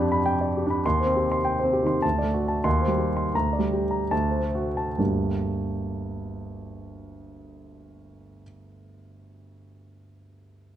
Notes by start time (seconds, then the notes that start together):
Already playing: F2 D4 G4 D5 B5
0.12 B5
0.26 G5
0.41 D5
0.57 G4
0.66 D4 B5
0.86 D#2 C6
1.00 C5
1.06 C4
1.16 G4
1.32 C6
1.45 G5
1.60 C5
1.64 C4
1.73 G4
1.83 D#3 C6
2.02 D2 A5
2.19 D5
2.23 A3
2.34 F#4
2.48 A5
2.64 D#2 C6
2.82 C5
2.88 G3
2.98 G4
3.17 C6
3.35 D2 A#5
3.53 D5
3.59 G3
3.73 G4
3.91 A#5
4.11 D2 A5
4.31 C5
4.41 A3
4.55 F#4
4.77 A5
4.98 G1 D2 G3 A#3 D4 G4